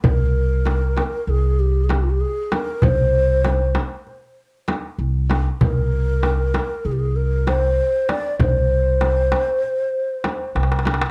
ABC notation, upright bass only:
X:1
M:9/8
L:1/8
Q:3/8=65
K:none
V:1 name="Upright bass" clef=bass
C,,4 C,,4 z | C,,4 z3 C,,2 | C,,4 C,,4 z | C,,4 z3 C,,2 |]